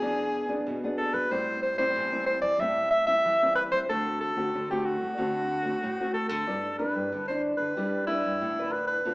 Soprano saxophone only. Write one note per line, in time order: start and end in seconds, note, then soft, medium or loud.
0.00 0.72 G#4 loud
0.97 1.15 A4 medium
1.14 1.33 B4 loud
1.31 1.62 C5 loud
1.62 1.77 C5 medium
1.78 2.24 C5 loud
2.26 2.41 C5 medium
2.41 2.61 D5 loud
2.60 2.90 E5 loud
2.91 3.06 E5 loud
3.07 3.53 E5 loud
3.55 3.63 B4 medium
3.71 3.79 C5 loud
3.89 4.19 A4 loud
4.21 4.66 A4 medium
4.70 4.87 G4 medium
4.85 6.13 F#4 medium
6.13 6.28 A4 medium
6.29 6.75 A4 medium
6.78 7.24 B4 medium
7.28 7.42 C5 medium
7.57 8.04 B4 medium
8.07 8.74 E4 medium
8.72 8.86 B4 medium
8.87 9.14 B4 medium